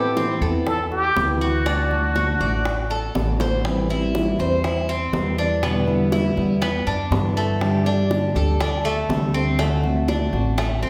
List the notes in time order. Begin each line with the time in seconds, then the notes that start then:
Already playing: A2 B3 C4 E4 G4 A4
0.16 E3 B3 C4 E4, high bongo
0.41 E2 B3 C4 E4 A4, high bongo
0.66 A4, muted steel-string acoustic guitar stroke, high bongo
0.92 G4, high bongo
1.16 D2 E3 B3 C4 E4, high bongo, low bongo
1.41 F#4
1.66 D3 A3 D4 F#4, high bongo
1.91 A3 D4 F#4, high bongo
2.16 D3 A3 D4 F#4, high bongo
2.40 A1 A3 D4 F#4 D5, high bongo
2.65 muted steel-string acoustic guitar stroke, high bongo
2.90 A4, high bongo
3.14 A1 D3 A3 D4 F#4, high bongo, low bongo
3.40 C5, high bongo
3.64 E3 G3 C4 E4, high bongo
3.89 G3 C4 E4, high bongo
4.14 E3 G3 C4 E4, high bongo
4.39 E2 G3 C4 E4 C5, high bongo
4.64 E4, muted steel-string acoustic guitar stroke, high bongo
4.89 C4, high bongo
5.13 E2 E3 G3 C4 E4, high bongo, low bongo
5.38 D4
5.62 B2 D3 G3 B3 E4, high bongo
5.87 D3 G3 B3 E4, high bongo
6.12 D3 G3 B3 E4, high bongo
6.37 E2 D3 G3 B3 E4, high bongo
6.62 B3, muted steel-string acoustic guitar stroke, high bongo
6.87 F#2 D4, high bongo
7.11 G2 D3 G3 B3 E4, high bongo, low bongo
7.37 A3
7.60 D3 G3 D4 G4, high bongo
7.85 G3 D4 G4, high bongo
8.10 D3 G3 D4 G4, high bongo
8.35 D2 G3 D4 G4 A4, high bongo
8.60 D4, muted steel-string acoustic guitar stroke, high bongo
8.85 A3, high bongo
9.09 D2 D3 G3 D4 G4, high bongo, low bongo
9.34 C4
9.59 D3 A3 C4 F#4, high bongo
9.83 A3 C4 F#4, high bongo
10.08 D3 A3 C4 D4 F#4, high bongo
10.33 A1 A3 C4 F#4, high bongo
10.58 A3, muted steel-string acoustic guitar stroke, high bongo
10.82 G1 C4, high bongo